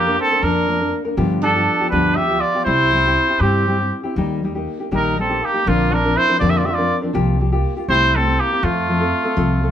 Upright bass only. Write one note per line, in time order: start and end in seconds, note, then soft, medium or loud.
0.00 0.17 F2 medium
0.42 0.91 F2 medium
1.18 1.66 G2 medium
1.92 2.40 D2 medium
2.66 3.15 C2 medium
3.40 3.89 G2 medium
4.16 4.65 D#2 medium
4.92 5.41 A#1 medium
5.67 6.15 A#1 medium
6.42 6.90 F2 medium
7.15 7.63 C2 medium
7.88 8.37 C2 medium
8.63 9.12 F2 medium
9.37 9.71 C2 medium